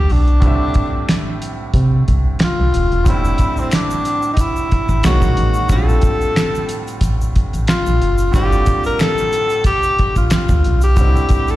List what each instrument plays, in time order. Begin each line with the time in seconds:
Already playing: grand piano A2 D3 G3 C4 F4, tenor saxophone G4
0.10 fm bass B1, tenor saxophone D4, open hi-hat
0.28 closed hi-hat
0.40 fm bass C2, grand piano A2 D3 G3, kick, closed hi-hat
0.46 grand piano C4 E5
0.74 kick, closed hi-hat
1.09 finger snap, snare, closed hi-hat
1.42 closed hi-hat
1.74 fm bass C3, kick, closed hi-hat
2.08 fm bass C2, kick, closed hi-hat
2.39 finger snap, snare, closed hi-hat
2.43 tenor saxophone F4
2.60 fm bass C2
2.74 fm bass D#1, closed hi-hat
2.92 fm bass E1, closed hi-hat
3.04 fm bass F1, grand piano A2 D3 G3, kick, closed hi-hat, shaker
3.09 grand piano C4 E4, tenor saxophone E4
3.25 shaker
3.38 kick, closed hi-hat, shaker
3.57 tenor saxophone C4, shaker
3.71 tenor saxophone D4, finger snap, snare, closed hi-hat, shaker
3.90 shaker
4.05 closed hi-hat, shaker
4.22 shaker
4.33 tenor saxophone D#4, closed hi-hat
4.37 tenor saxophone E4, kick, shaker
4.56 shaker
4.71 fm bass A1, kick, closed hi-hat
4.89 fm bass A1, kick, shaker
5.03 fm bass B1, grand piano D#3 G#3 A#3 C#4, tenor saxophone F#4, finger snap, snare, closed hi-hat, shaker
5.08 grand piano F#4
5.22 fm bass A#1, kick, shaker
5.37 fm bass A1, closed hi-hat
5.54 shaker
5.68 fm bass A#1, grand piano A2 D3 G3, tenor saxophone A4, kick, closed hi-hat, shaker
5.73 grand piano C4 F4
5.89 shaker
6.01 kick, closed hi-hat, shaker
6.21 shaker
6.36 finger snap, snare, closed hi-hat, shaker
6.55 shaker
6.69 closed hi-hat, shaker
6.87 closed hi-hat, shaker
7.01 fm bass A1, kick, closed hi-hat, shaker
7.21 shaker
7.36 kick, closed hi-hat
7.53 fm bass A1, closed hi-hat, shaker
7.67 tenor saxophone F4, finger snap, snare, closed hi-hat, shaker
7.86 fm bass A#1, shaker
8.02 fm bass F#1, closed hi-hat
8.18 closed hi-hat, shaker
8.32 fm bass G1, grand piano A2 D3 G3, tenor saxophone G4, kick, closed hi-hat, shaker
8.37 grand piano C4 E4
8.45 grand piano F4
8.52 shaker
8.66 kick, closed hi-hat, shaker
8.84 tenor saxophone A#4, shaker
8.99 tenor saxophone A4, finger snap, snare, closed hi-hat, shaker
9.18 shaker
9.32 closed hi-hat, shaker
9.49 closed hi-hat, shaker
9.64 tenor saxophone G4, kick, closed hi-hat, shaker
9.83 shaker
9.99 fm bass A#1, kick, closed hi-hat
10.16 fm bass A#1, tenor saxophone F4, kick, closed hi-hat, shaker
10.30 tenor saxophone F4, finger snap, snare, closed hi-hat, shaker
10.49 fm bass D2, kick, shaker
10.64 fm bass B1, closed hi-hat
10.81 tenor saxophone G4, closed hi-hat, shaker
10.95 fm bass C2, grand piano A2 D3 G3, kick, closed hi-hat, shaker
11.01 grand piano C4 D#4
11.09 grand piano E4
11.16 shaker
11.29 kick, closed hi-hat, shaker
11.48 tenor saxophone A4, closed hi-hat, shaker